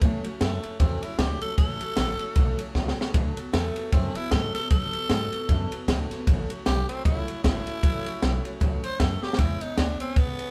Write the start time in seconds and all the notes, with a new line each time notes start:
0.01 A2 E3 F#3 A3 C#4 F#4, kick, ride
0.24 F#3 A3 C#4 F#4, muted upright bass stroke, ride
0.40 F#2 F#3 A3 C#4, snare, ride
0.63 F#3 A3 C#4 F#4, muted upright bass stroke, ride
0.79 E2 A2 E3 F#3 A3 C4 C#4 F#4, kick, ride
1.03 F#3 A3 C#4 E4 F#4, muted upright bass stroke, ride
1.19 D2 F#3 A3 F#4 G4, kick, snare, ride
1.41 F#3 A3 C#4 F#4 A4, ride
1.58 C#2 A2 E3 F#3 A3 C#4 F#4 A4, kick, ride
1.80 F#3 A3 C#4 F#4, muted upright bass stroke, ride
1.97 A1 F#3 A3 C#4 F#4, snare, ride
2.19 F#3 A3 C#4 F#4, muted upright bass stroke, ride
2.35 B1 A2 E3 F#3 A3 C#4 F#4, kick, ride
2.59 F#3 A3 C#4 F#4, muted upright bass stroke, ride
2.75 C#2 F#3 A3 C#4 F#4, kick, snare
2.88 snare
2.98 F#3 A3 C#4 F#4, muted upright bass stroke, snare
3.14 D2 D3 F#3 B3 F#4 A4, kick, ride
3.37 B3 F#4 A4, muted upright bass stroke, ride
3.53 E2 F#3 A3 B3, snare, ride
3.76 B3 F#4 A4, muted upright bass stroke, ride
3.92 F#2 D3 F#3 B3 C4 F#4 A4, kick, ride
4.15 B3 E4 F#4 A4, muted upright bass stroke, ride
4.31 G#2 F#3 B3 F#4 A4, kick, snare, ride
4.54 B3 F#4 A4, muted upright bass stroke, snare, ride
4.70 A2 D3 F#3 B3 F#4 A4, kick, ride
4.93 B3 F#4 A4, muted upright bass stroke, ride
5.10 G#2 F#3 B3 F#4 A4, snare, ride
5.32 B3 F#4 A4, muted upright bass stroke, ride
5.49 F#2 D3 F#3 B3 F#4 A4, kick, ride
5.71 B3 F#4 A4, muted upright bass stroke, ride
5.88 D2 F#3 B3 F#4 A4, kick, snare, ride
6.11 B3 F#4 A4, muted upright bass stroke, snare, ride
6.27 A1 A2 E3 F#3 A3 C#4 F#4, kick, ride
6.50 F#3 A3 C#4 F#4, muted upright bass stroke, ride
6.66 B1 F#3 A3 C#4 G4, snare, ride
6.88 F#3 A3 C4 C#4 F#4, ride
7.05 C#2 A2 E3 F#3 A3 C#4 E4 F#4, kick, ride
7.27 F#3 A3 C#4 F#4, ride
7.43 G#1 F#3 A3 C#4 E4, kick, snare, ride
7.66 F#3 A3 C#4 F#4, muted upright bass stroke, ride
7.83 A1 A2 E3 F#3 A3 C#4 F#4, kick, ride
8.06 F#3 A3 C#4 F#4, ride
8.22 B1 F#3 A3 C#4, snare, ride
8.45 F#3 A3 C#4 F#4, ride
8.60 C#2 A2 E3 F#3 A3 C#4 F#4, kick, ride
8.84 F#3 A3 C#4 F#4 C5, ride
8.99 F#2 F#3 A3 C#4 F#4 A4, kick, snare, ride
9.22 F#3 A3 C#4 F#4 G4, muted upright bass stroke, snare
9.33 snare
9.38 E2 E3 G#3 B3 C#4 E4 G#4, kick, ride
9.61 B3 C#4 D#4 G#4, muted upright bass stroke, ride
9.77 D2 G#3 B3 C#4 D4 G#4, snare, ride
10.00 B3 C4 C#4 G#4, muted upright bass stroke, ride
10.16 C#2 E3 G#3 B3 C#4 G#4, kick, ride
10.39 B3 C#4 G#4, muted upright bass stroke, ride